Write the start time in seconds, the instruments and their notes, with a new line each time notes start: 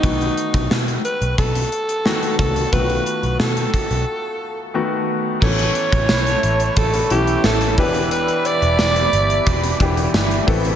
Already playing: alto saxophone D#4
0.02 picked electric bass B1, grand piano D#3 A3 B3 F#4, kick, closed hi-hat
0.21 closed hi-hat
0.37 closed hi-hat
0.54 picked electric bass B1, kick, closed hi-hat
0.71 picked electric bass B2, snare
0.88 closed hi-hat
1.04 alto saxophone B4, closed hi-hat
1.21 picked electric bass B1, closed hi-hat
1.38 picked electric bass B1, alto saxophone A4, kick, closed hi-hat
1.55 closed hi-hat
1.72 closed hi-hat
1.89 closed hi-hat
2.05 grand piano D#3 A3 B3 F#4, snare
2.23 closed hi-hat
2.39 picked electric bass C2, alto saxophone A4, kick, closed hi-hat
2.56 closed hi-hat
2.72 picked electric bass B1, grand piano D#3 A3 B3 F4, alto saxophone B4, kick, closed hi-hat
2.80 grand piano F#4
2.90 closed hi-hat
3.06 closed hi-hat
3.23 picked electric bass B1, closed hi-hat
3.40 picked electric bass B2, alto saxophone A4, snare
3.57 closed hi-hat
3.74 kick, closed hi-hat
3.91 picked electric bass B1, closed hi-hat
4.74 grand piano D#3 A3 B3 F#4
5.41 picked electric bass A1, overdriven electric guitar A2 E3 A3, grand piano E3 B3 C#4 A4, analog synth pad A4 C#5 E5 B5, alto saxophone C#5, kick, crash
5.59 closed hi-hat
5.75 closed hi-hat
5.92 picked electric bass A1, kick, closed hi-hat
6.09 picked electric bass B1, overdriven electric guitar A2 E3 A3, snare, tambourine
6.26 closed hi-hat
6.43 picked electric bass A1, closed hi-hat
6.60 closed hi-hat
6.76 picked electric bass A1, overdriven electric guitar A2 E3 A3, alto saxophone A4, kick, closed hi-hat
6.94 closed hi-hat
7.10 picked electric bass B1, grand piano E3 B3 C#4 E4, alto saxophone G4, closed hi-hat
7.27 closed hi-hat
7.44 picked electric bass A1, alto saxophone A4, snare, tambourine
7.61 closed hi-hat
7.77 picked electric bass E1, overdriven electric guitar E2 B2 E3, grand piano E3 B3 D4 G4, analog synth pad G4 D5, alto saxophone B4, kick, open hi-hat
7.95 closed hi-hat
8.11 alto saxophone B4, closed hi-hat
8.28 closed hi-hat
8.45 alto saxophone D5, closed hi-hat
8.62 picked electric bass E1, closed hi-hat
8.79 picked electric bass E1, snare, tambourine
8.96 closed hi-hat
9.13 picked electric bass G1, closed hi-hat
9.30 closed hi-hat
9.46 picked electric bass E1, overdriven electric guitar E2 B2 E3, kick, closed hi-hat
9.64 closed hi-hat
9.80 picked electric bass E1, grand piano E3 B3 D4 G4, kick, closed hi-hat
9.97 closed hi-hat
10.14 picked electric bass G1, snare, tambourine
10.31 closed hi-hat
10.47 picked electric bass A1, overdriven electric guitar A2 E3 A3, grand piano E3 B3 C4 A4, analog synth pad A4 B4 E5, kick, open hi-hat
10.65 closed hi-hat